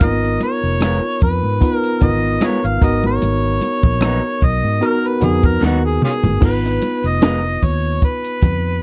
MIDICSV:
0, 0, Header, 1, 6, 480
1, 0, Start_track
1, 0, Tempo, 801068
1, 7, Time_signature, 4, 2, 24, 8
1, 5289, End_track
2, 0, Start_track
2, 0, Title_t, "Harmonica"
2, 0, Program_c, 0, 22
2, 27, Note_on_c, 0, 75, 94
2, 257, Note_off_c, 0, 75, 0
2, 260, Note_on_c, 0, 73, 101
2, 710, Note_off_c, 0, 73, 0
2, 737, Note_on_c, 0, 71, 99
2, 1049, Note_off_c, 0, 71, 0
2, 1049, Note_on_c, 0, 70, 99
2, 1220, Note_on_c, 0, 75, 94
2, 1229, Note_off_c, 0, 70, 0
2, 1473, Note_on_c, 0, 73, 97
2, 1482, Note_off_c, 0, 75, 0
2, 1596, Note_on_c, 0, 77, 89
2, 1605, Note_off_c, 0, 73, 0
2, 1703, Note_on_c, 0, 75, 93
2, 1712, Note_off_c, 0, 77, 0
2, 1826, Note_off_c, 0, 75, 0
2, 1838, Note_on_c, 0, 73, 102
2, 2667, Note_on_c, 0, 75, 89
2, 2676, Note_off_c, 0, 73, 0
2, 2908, Note_on_c, 0, 70, 86
2, 2917, Note_off_c, 0, 75, 0
2, 3039, Note_on_c, 0, 71, 77
2, 3048, Note_off_c, 0, 70, 0
2, 3144, Note_on_c, 0, 68, 78
2, 3153, Note_off_c, 0, 71, 0
2, 3270, Note_on_c, 0, 70, 81
2, 3279, Note_off_c, 0, 68, 0
2, 3375, Note_off_c, 0, 70, 0
2, 3383, Note_on_c, 0, 66, 85
2, 3497, Note_off_c, 0, 66, 0
2, 3509, Note_on_c, 0, 68, 74
2, 3607, Note_off_c, 0, 68, 0
2, 3624, Note_on_c, 0, 61, 61
2, 3624, Note_on_c, 0, 65, 61
2, 3624, Note_on_c, 0, 68, 86
2, 3660, Note_off_c, 0, 65, 0
2, 3672, Note_off_c, 0, 61, 0
2, 3840, Note_off_c, 0, 68, 0
2, 3863, Note_on_c, 0, 71, 93
2, 4236, Note_on_c, 0, 75, 99
2, 4245, Note_off_c, 0, 71, 0
2, 4579, Note_on_c, 0, 73, 89
2, 4588, Note_off_c, 0, 75, 0
2, 4814, Note_off_c, 0, 73, 0
2, 4822, Note_on_c, 0, 71, 91
2, 5289, Note_off_c, 0, 71, 0
2, 5289, End_track
3, 0, Start_track
3, 0, Title_t, "Tine electric piano"
3, 0, Program_c, 1, 4
3, 0, Control_c, 1, 64, 127
3, 4, Note_on_c, 1, 58, 55
3, 5, Note_on_c, 1, 63, 65
3, 9, Note_on_c, 1, 65, 65
3, 11, Note_on_c, 1, 70, 79
3, 13, Control_c, 1, 64, 0
3, 41, Note_on_c, 1, 59, 75
3, 48, Note_off_c, 1, 58, 0
3, 118, Control_c, 1, 64, 127
3, 786, Note_off_c, 1, 63, 0
3, 788, Note_off_c, 1, 65, 0
3, 789, Note_off_c, 1, 70, 0
3, 804, Note_off_c, 1, 59, 0
3, 962, Note_on_c, 1, 59, 71
3, 964, Note_on_c, 1, 63, 67
3, 969, Note_on_c, 1, 65, 64
3, 970, Note_on_c, 1, 71, 76
3, 1162, Note_off_c, 1, 59, 0
3, 1163, Note_off_c, 1, 63, 0
3, 1166, Note_off_c, 1, 65, 0
3, 1167, Note_off_c, 1, 71, 0
3, 1203, Note_on_c, 1, 59, 66
3, 1206, Note_on_c, 1, 63, 58
3, 1210, Note_on_c, 1, 65, 59
3, 1212, Note_on_c, 1, 70, 67
3, 1678, Note_off_c, 1, 59, 0
3, 1679, Note_off_c, 1, 63, 0
3, 1685, Note_off_c, 1, 70, 0
3, 1685, Note_on_c, 1, 59, 72
3, 1686, Note_on_c, 1, 63, 69
3, 1689, Note_off_c, 1, 65, 0
3, 1689, Note_on_c, 1, 66, 67
3, 1692, Note_on_c, 1, 70, 85
3, 1696, Control_c, 1, 64, 0
3, 1805, Control_c, 1, 64, 127
3, 2466, Note_off_c, 1, 59, 0
3, 2467, Note_off_c, 1, 63, 0
3, 2468, Note_off_c, 1, 66, 0
3, 2470, Note_off_c, 1, 70, 0
3, 2881, Note_on_c, 1, 59, 70
3, 2885, Note_on_c, 1, 63, 67
3, 2887, Note_on_c, 1, 66, 69
3, 2892, Note_on_c, 1, 70, 85
3, 3083, Note_off_c, 1, 59, 0
3, 3084, Note_off_c, 1, 63, 0
3, 3085, Note_off_c, 1, 66, 0
3, 3088, Note_off_c, 1, 70, 0
3, 3119, Note_on_c, 1, 59, 67
3, 3123, Note_on_c, 1, 63, 61
3, 3125, Note_on_c, 1, 66, 61
3, 3129, Note_on_c, 1, 71, 66
3, 3713, Note_off_c, 1, 59, 0
3, 3715, Note_off_c, 1, 63, 0
3, 3716, Note_off_c, 1, 66, 0
3, 3718, Note_off_c, 1, 71, 0
3, 3837, Note_on_c, 1, 59, 71
3, 3839, Note_on_c, 1, 63, 62
3, 3844, Note_on_c, 1, 65, 64
3, 3845, Note_on_c, 1, 69, 66
3, 3856, Control_c, 1, 64, 0
3, 3885, Note_on_c, 1, 71, 75
3, 3889, Note_off_c, 1, 69, 0
3, 3978, Control_c, 1, 64, 127
3, 4622, Note_off_c, 1, 59, 0
3, 4623, Note_off_c, 1, 63, 0
3, 4625, Note_off_c, 1, 65, 0
3, 4646, Note_off_c, 1, 71, 0
3, 5289, End_track
4, 0, Start_track
4, 0, Title_t, "Clean electric guitar"
4, 0, Program_c, 2, 27
4, 485, Note_on_c, 2, 56, 64
4, 491, Note_on_c, 2, 59, 71
4, 491, Note_on_c, 2, 65, 74
4, 495, Note_on_c, 2, 70, 73
4, 588, Note_off_c, 2, 56, 0
4, 590, Note_off_c, 2, 59, 0
4, 590, Note_off_c, 2, 65, 0
4, 593, Note_off_c, 2, 70, 0
4, 1441, Note_on_c, 2, 56, 72
4, 1446, Note_on_c, 2, 59, 74
4, 1449, Note_on_c, 2, 65, 79
4, 1453, Note_on_c, 2, 70, 82
4, 1546, Note_off_c, 2, 56, 0
4, 1549, Note_off_c, 2, 59, 0
4, 1550, Note_off_c, 2, 65, 0
4, 1552, Note_off_c, 2, 70, 0
4, 2399, Note_on_c, 2, 54, 73
4, 2405, Note_on_c, 2, 59, 74
4, 2408, Note_on_c, 2, 70, 77
4, 2409, Note_on_c, 2, 63, 76
4, 2505, Note_off_c, 2, 54, 0
4, 2508, Note_off_c, 2, 59, 0
4, 2510, Note_off_c, 2, 63, 0
4, 2510, Note_off_c, 2, 70, 0
4, 3359, Note_on_c, 2, 54, 66
4, 3363, Note_on_c, 2, 59, 77
4, 3367, Note_on_c, 2, 63, 72
4, 3369, Note_on_c, 2, 70, 75
4, 3465, Note_off_c, 2, 54, 0
4, 3468, Note_off_c, 2, 59, 0
4, 3469, Note_off_c, 2, 63, 0
4, 3470, Note_off_c, 2, 70, 0
4, 4321, Note_on_c, 2, 56, 77
4, 4325, Note_on_c, 2, 59, 72
4, 4328, Note_on_c, 2, 65, 67
4, 4330, Note_on_c, 2, 70, 73
4, 4426, Note_off_c, 2, 56, 0
4, 4428, Note_off_c, 2, 59, 0
4, 4429, Note_off_c, 2, 65, 0
4, 4431, Note_off_c, 2, 70, 0
4, 5289, End_track
5, 0, Start_track
5, 0, Title_t, "Fingered electric bass"
5, 0, Program_c, 3, 33
5, 7, Note_on_c, 3, 32, 93
5, 221, Note_off_c, 3, 32, 0
5, 381, Note_on_c, 3, 29, 81
5, 592, Note_off_c, 3, 29, 0
5, 731, Note_on_c, 3, 41, 92
5, 845, Note_off_c, 3, 41, 0
5, 860, Note_on_c, 3, 44, 83
5, 957, Note_off_c, 3, 44, 0
5, 1208, Note_on_c, 3, 32, 79
5, 1422, Note_off_c, 3, 32, 0
5, 1584, Note_on_c, 3, 32, 87
5, 1679, Note_off_c, 3, 32, 0
5, 1688, Note_on_c, 3, 32, 89
5, 1902, Note_off_c, 3, 32, 0
5, 1933, Note_on_c, 3, 32, 93
5, 2144, Note_off_c, 3, 32, 0
5, 2298, Note_on_c, 3, 34, 81
5, 2512, Note_off_c, 3, 34, 0
5, 2649, Note_on_c, 3, 35, 91
5, 2764, Note_off_c, 3, 35, 0
5, 2780, Note_on_c, 3, 44, 91
5, 2878, Note_off_c, 3, 44, 0
5, 3128, Note_on_c, 3, 41, 81
5, 3342, Note_off_c, 3, 41, 0
5, 3369, Note_on_c, 3, 39, 83
5, 3583, Note_off_c, 3, 39, 0
5, 3736, Note_on_c, 3, 31, 86
5, 3835, Note_off_c, 3, 31, 0
5, 3846, Note_on_c, 3, 32, 94
5, 4061, Note_off_c, 3, 32, 0
5, 4219, Note_on_c, 3, 29, 78
5, 4530, Note_off_c, 3, 29, 0
5, 4569, Note_on_c, 3, 39, 84
5, 4782, Note_off_c, 3, 39, 0
5, 5049, Note_on_c, 3, 41, 78
5, 5262, Note_off_c, 3, 41, 0
5, 5289, End_track
6, 0, Start_track
6, 0, Title_t, "Drums"
6, 3, Note_on_c, 9, 62, 42
6, 5, Note_on_c, 9, 42, 90
6, 6, Note_on_c, 9, 36, 111
6, 63, Note_off_c, 9, 62, 0
6, 65, Note_off_c, 9, 42, 0
6, 66, Note_off_c, 9, 36, 0
6, 141, Note_on_c, 9, 37, 34
6, 201, Note_off_c, 9, 37, 0
6, 243, Note_on_c, 9, 62, 50
6, 245, Note_on_c, 9, 42, 72
6, 303, Note_off_c, 9, 62, 0
6, 305, Note_off_c, 9, 42, 0
6, 483, Note_on_c, 9, 63, 71
6, 492, Note_on_c, 9, 37, 101
6, 492, Note_on_c, 9, 42, 89
6, 543, Note_off_c, 9, 63, 0
6, 552, Note_off_c, 9, 37, 0
6, 552, Note_off_c, 9, 42, 0
6, 723, Note_on_c, 9, 42, 51
6, 730, Note_on_c, 9, 36, 86
6, 783, Note_off_c, 9, 42, 0
6, 790, Note_off_c, 9, 36, 0
6, 968, Note_on_c, 9, 36, 88
6, 971, Note_on_c, 9, 42, 60
6, 1027, Note_off_c, 9, 36, 0
6, 1031, Note_off_c, 9, 42, 0
6, 1100, Note_on_c, 9, 42, 54
6, 1160, Note_off_c, 9, 42, 0
6, 1202, Note_on_c, 9, 42, 70
6, 1208, Note_on_c, 9, 36, 79
6, 1208, Note_on_c, 9, 64, 73
6, 1262, Note_off_c, 9, 42, 0
6, 1268, Note_off_c, 9, 36, 0
6, 1268, Note_off_c, 9, 64, 0
6, 1443, Note_on_c, 9, 42, 94
6, 1445, Note_on_c, 9, 63, 61
6, 1451, Note_on_c, 9, 37, 98
6, 1503, Note_off_c, 9, 42, 0
6, 1505, Note_off_c, 9, 63, 0
6, 1511, Note_off_c, 9, 37, 0
6, 1688, Note_on_c, 9, 36, 102
6, 1693, Note_on_c, 9, 42, 78
6, 1748, Note_off_c, 9, 36, 0
6, 1753, Note_off_c, 9, 42, 0
6, 1820, Note_on_c, 9, 63, 70
6, 1880, Note_off_c, 9, 63, 0
6, 1929, Note_on_c, 9, 42, 92
6, 1931, Note_on_c, 9, 62, 41
6, 1989, Note_off_c, 9, 42, 0
6, 1991, Note_off_c, 9, 62, 0
6, 2165, Note_on_c, 9, 62, 46
6, 2169, Note_on_c, 9, 42, 75
6, 2225, Note_off_c, 9, 62, 0
6, 2229, Note_off_c, 9, 42, 0
6, 2297, Note_on_c, 9, 36, 86
6, 2357, Note_off_c, 9, 36, 0
6, 2402, Note_on_c, 9, 63, 74
6, 2411, Note_on_c, 9, 37, 107
6, 2411, Note_on_c, 9, 42, 88
6, 2462, Note_off_c, 9, 63, 0
6, 2470, Note_off_c, 9, 37, 0
6, 2471, Note_off_c, 9, 42, 0
6, 2642, Note_on_c, 9, 42, 54
6, 2649, Note_on_c, 9, 36, 88
6, 2702, Note_off_c, 9, 42, 0
6, 2709, Note_off_c, 9, 36, 0
6, 2889, Note_on_c, 9, 42, 65
6, 2949, Note_off_c, 9, 42, 0
6, 3123, Note_on_c, 9, 42, 68
6, 3129, Note_on_c, 9, 62, 34
6, 3129, Note_on_c, 9, 64, 77
6, 3183, Note_off_c, 9, 42, 0
6, 3189, Note_off_c, 9, 62, 0
6, 3189, Note_off_c, 9, 64, 0
6, 3256, Note_on_c, 9, 36, 85
6, 3316, Note_off_c, 9, 36, 0
6, 3362, Note_on_c, 9, 63, 60
6, 3371, Note_on_c, 9, 38, 49
6, 3422, Note_off_c, 9, 63, 0
6, 3431, Note_off_c, 9, 38, 0
6, 3607, Note_on_c, 9, 45, 88
6, 3667, Note_off_c, 9, 45, 0
6, 3736, Note_on_c, 9, 43, 96
6, 3741, Note_on_c, 9, 63, 72
6, 3795, Note_off_c, 9, 43, 0
6, 3801, Note_off_c, 9, 63, 0
6, 3844, Note_on_c, 9, 49, 86
6, 3846, Note_on_c, 9, 36, 118
6, 3848, Note_on_c, 9, 62, 40
6, 3904, Note_off_c, 9, 49, 0
6, 3906, Note_off_c, 9, 36, 0
6, 3908, Note_off_c, 9, 62, 0
6, 3981, Note_on_c, 9, 38, 33
6, 4041, Note_off_c, 9, 38, 0
6, 4084, Note_on_c, 9, 42, 75
6, 4089, Note_on_c, 9, 62, 48
6, 4144, Note_off_c, 9, 42, 0
6, 4149, Note_off_c, 9, 62, 0
6, 4216, Note_on_c, 9, 42, 51
6, 4275, Note_off_c, 9, 42, 0
6, 4326, Note_on_c, 9, 63, 70
6, 4331, Note_on_c, 9, 38, 108
6, 4331, Note_on_c, 9, 42, 89
6, 4386, Note_off_c, 9, 63, 0
6, 4391, Note_off_c, 9, 38, 0
6, 4391, Note_off_c, 9, 42, 0
6, 4563, Note_on_c, 9, 46, 40
6, 4570, Note_on_c, 9, 36, 88
6, 4623, Note_off_c, 9, 46, 0
6, 4630, Note_off_c, 9, 36, 0
6, 4806, Note_on_c, 9, 36, 84
6, 4808, Note_on_c, 9, 42, 62
6, 4866, Note_off_c, 9, 36, 0
6, 4868, Note_off_c, 9, 42, 0
6, 4939, Note_on_c, 9, 42, 57
6, 4999, Note_off_c, 9, 42, 0
6, 5043, Note_on_c, 9, 42, 70
6, 5048, Note_on_c, 9, 36, 85
6, 5048, Note_on_c, 9, 62, 32
6, 5048, Note_on_c, 9, 64, 71
6, 5103, Note_off_c, 9, 42, 0
6, 5108, Note_off_c, 9, 36, 0
6, 5108, Note_off_c, 9, 62, 0
6, 5108, Note_off_c, 9, 64, 0
6, 5289, End_track
0, 0, End_of_file